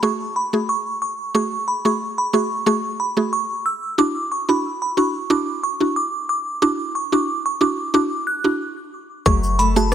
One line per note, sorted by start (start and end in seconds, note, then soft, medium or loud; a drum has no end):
0.03 0.49 A3 medium
0.03 0.49 F#4 medium
0.03 0.49 G#4 loud
0.03 0.17 C#6 medium
0.36 0.50 B5 medium
0.53 0.74 A3 medium
0.53 0.74 F#4 medium
0.53 0.74 G#4 medium
0.69 0.83 C#6 medium
1.02 1.16 C#6 medium
1.35 1.57 A3 medium
1.35 1.57 F#4 medium
1.35 1.57 G#4 medium
1.35 1.49 C#6 loud
1.68 1.82 B5 medium
1.85 2.06 A3 medium
1.85 2.06 F#4 medium
1.85 2.06 G#4 medium
1.85 1.98 C#6 medium
2.18 2.31 B5 medium
2.33 2.55 A3 medium
2.33 2.56 F#4 medium
2.33 2.56 G#4 medium
2.33 2.48 C#6 medium
2.66 3.13 A3 loud
2.66 3.13 F#4 medium
2.66 3.13 G#4 loud
2.66 2.81 C#6 medium
3.00 3.14 B5 medium
3.17 3.37 A3 medium
3.17 3.38 F#4 medium
3.17 3.38 G#4 medium
3.33 3.47 C#6 medium
3.66 3.80 E6 medium
3.98 4.20 D4 medium
3.98 4.20 E4 medium
3.98 4.21 F#4 loud
3.98 4.13 D6 loud
4.32 4.46 C#6 medium
4.49 4.69 D4 medium
4.49 4.69 E4 medium
4.49 4.70 F#4 medium
4.49 4.62 B5 medium
4.82 4.95 B5 medium
4.97 5.19 D4 medium
4.97 5.19 E4 medium
4.97 5.19 F#4 medium
4.97 5.12 C#6 medium
5.30 5.76 D4 medium
5.30 5.77 E4 medium
5.30 5.77 F#4 loud
5.30 5.45 D6 medium
5.63 5.78 C#6 medium
5.80 6.01 D4 medium
5.80 6.01 E4 medium
5.80 6.01 F#4 medium
5.96 6.11 D6 medium
6.29 6.44 D6 medium
6.62 6.84 D4 medium
6.62 6.84 E4 medium
6.62 6.84 F#4 loud
6.62 6.77 D6 loud
6.95 7.10 C#6 medium
7.12 7.33 D4 medium
7.12 7.33 E4 medium
7.12 7.33 F#4 medium
7.12 7.25 D6 medium
7.46 7.58 C#6 medium
7.61 7.83 D4 medium
7.61 7.83 E4 medium
7.61 7.83 F#4 medium
7.61 7.75 D6 medium
7.94 8.40 D4 medium
7.94 8.40 E4 medium
7.94 8.41 F#4 loud
7.94 8.08 D6 medium
8.27 8.41 F#6 medium
8.44 8.65 D4 medium
8.44 8.65 E4 medium
8.44 8.65 F#4 medium
9.26 9.95 F#1 loud
9.26 9.95 F#2 medium
9.26 9.48 A3 medium
9.26 9.48 F#4 medium
9.26 9.48 G#4 loud
9.26 9.40 C#6 loud
9.26 kick loud
9.26 shaker medium
9.43 shaker medium
9.59 9.95 A3 medium
9.59 9.73 B5 medium
9.59 closed hi-hat medium
9.59 shaker medium
9.76 9.95 A3 medium
9.76 9.95 F#4 medium
9.76 9.95 G#4 medium
9.76 9.95 A5 medium
9.76 shaker medium